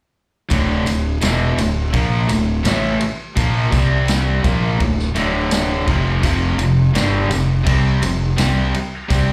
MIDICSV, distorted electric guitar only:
0, 0, Header, 1, 3, 480
1, 0, Start_track
1, 0, Key_signature, -1, "minor"
1, 0, Tempo, 716846
1, 342, Time_signature, 4, 2, 24, 8
1, 6245, End_track
2, 0, Start_track
2, 0, Title_t, "Distorted electric guitar"
2, 0, Program_c, 0, 30
2, 342, Note_on_c, 0, 38, 101
2, 345, Note_on_c, 0, 45, 106
2, 347, Note_on_c, 0, 50, 107
2, 573, Note_off_c, 0, 38, 0
2, 574, Note_off_c, 0, 45, 0
2, 577, Note_off_c, 0, 50, 0
2, 581, Note_on_c, 0, 38, 63
2, 582, Note_on_c, 0, 45, 75
2, 773, Note_off_c, 0, 38, 0
2, 774, Note_off_c, 0, 45, 0
2, 814, Note_on_c, 0, 40, 86
2, 820, Note_on_c, 0, 47, 90
2, 823, Note_on_c, 0, 52, 95
2, 1050, Note_off_c, 0, 40, 0
2, 1053, Note_off_c, 0, 47, 0
2, 1055, Note_off_c, 0, 52, 0
2, 1063, Note_on_c, 0, 38, 68
2, 1065, Note_on_c, 0, 45, 70
2, 1253, Note_off_c, 0, 38, 0
2, 1255, Note_off_c, 0, 45, 0
2, 1294, Note_on_c, 0, 46, 89
2, 1296, Note_on_c, 0, 53, 97
2, 1298, Note_on_c, 0, 58, 103
2, 1530, Note_off_c, 0, 46, 0
2, 1531, Note_off_c, 0, 53, 0
2, 1532, Note_off_c, 0, 58, 0
2, 1534, Note_on_c, 0, 38, 63
2, 1538, Note_on_c, 0, 45, 76
2, 1729, Note_off_c, 0, 38, 0
2, 1731, Note_off_c, 0, 45, 0
2, 1778, Note_on_c, 0, 45, 91
2, 1782, Note_on_c, 0, 52, 100
2, 1783, Note_on_c, 0, 57, 102
2, 2011, Note_off_c, 0, 45, 0
2, 2014, Note_off_c, 0, 52, 0
2, 2014, Note_off_c, 0, 57, 0
2, 2250, Note_on_c, 0, 46, 95
2, 2252, Note_on_c, 0, 53, 107
2, 2257, Note_on_c, 0, 58, 104
2, 2487, Note_off_c, 0, 46, 0
2, 2489, Note_off_c, 0, 53, 0
2, 2491, Note_off_c, 0, 58, 0
2, 2491, Note_on_c, 0, 48, 96
2, 2495, Note_on_c, 0, 55, 98
2, 2497, Note_on_c, 0, 60, 104
2, 2968, Note_off_c, 0, 48, 0
2, 2969, Note_off_c, 0, 55, 0
2, 2970, Note_off_c, 0, 60, 0
2, 2975, Note_on_c, 0, 46, 102
2, 2978, Note_on_c, 0, 53, 99
2, 2978, Note_on_c, 0, 58, 101
2, 3209, Note_off_c, 0, 46, 0
2, 3211, Note_off_c, 0, 53, 0
2, 3211, Note_off_c, 0, 58, 0
2, 3219, Note_on_c, 0, 38, 62
2, 3221, Note_on_c, 0, 45, 73
2, 3411, Note_off_c, 0, 38, 0
2, 3412, Note_off_c, 0, 45, 0
2, 3458, Note_on_c, 0, 38, 96
2, 3465, Note_on_c, 0, 45, 102
2, 3467, Note_on_c, 0, 50, 108
2, 3931, Note_off_c, 0, 38, 0
2, 3935, Note_off_c, 0, 45, 0
2, 3935, Note_off_c, 0, 50, 0
2, 3939, Note_on_c, 0, 41, 93
2, 3941, Note_on_c, 0, 48, 96
2, 3942, Note_on_c, 0, 53, 113
2, 4172, Note_off_c, 0, 41, 0
2, 4172, Note_off_c, 0, 48, 0
2, 4173, Note_off_c, 0, 53, 0
2, 4180, Note_on_c, 0, 41, 101
2, 4184, Note_on_c, 0, 48, 102
2, 4186, Note_on_c, 0, 53, 112
2, 4412, Note_off_c, 0, 41, 0
2, 4414, Note_off_c, 0, 48, 0
2, 4415, Note_off_c, 0, 53, 0
2, 4425, Note_on_c, 0, 41, 70
2, 4429, Note_on_c, 0, 48, 77
2, 4614, Note_off_c, 0, 41, 0
2, 4616, Note_off_c, 0, 48, 0
2, 4661, Note_on_c, 0, 43, 93
2, 4667, Note_on_c, 0, 50, 97
2, 4668, Note_on_c, 0, 55, 102
2, 4893, Note_off_c, 0, 43, 0
2, 4895, Note_off_c, 0, 50, 0
2, 4896, Note_off_c, 0, 55, 0
2, 4897, Note_on_c, 0, 48, 79
2, 4898, Note_on_c, 0, 41, 66
2, 5090, Note_off_c, 0, 41, 0
2, 5090, Note_off_c, 0, 48, 0
2, 5134, Note_on_c, 0, 48, 95
2, 5138, Note_on_c, 0, 55, 93
2, 5141, Note_on_c, 0, 60, 97
2, 5369, Note_off_c, 0, 48, 0
2, 5371, Note_off_c, 0, 55, 0
2, 5373, Note_off_c, 0, 60, 0
2, 5378, Note_on_c, 0, 41, 74
2, 5380, Note_on_c, 0, 48, 80
2, 5570, Note_off_c, 0, 41, 0
2, 5572, Note_off_c, 0, 48, 0
2, 5612, Note_on_c, 0, 48, 101
2, 5615, Note_on_c, 0, 55, 90
2, 5615, Note_on_c, 0, 60, 99
2, 5848, Note_off_c, 0, 48, 0
2, 5850, Note_off_c, 0, 55, 0
2, 5850, Note_off_c, 0, 60, 0
2, 6088, Note_on_c, 0, 48, 91
2, 6096, Note_on_c, 0, 55, 107
2, 6096, Note_on_c, 0, 60, 114
2, 6245, Note_off_c, 0, 48, 0
2, 6245, Note_off_c, 0, 55, 0
2, 6245, Note_off_c, 0, 60, 0
2, 6245, End_track
3, 0, Start_track
3, 0, Title_t, "Muted distorted electric guitar strokes"
3, 2020, Note_on_c, 9, 29, 62
3, 2086, Note_off_c, 9, 29, 0
3, 5855, Note_on_c, 9, 29, 59
3, 5922, Note_off_c, 9, 29, 0
3, 6245, End_track
0, 0, End_of_file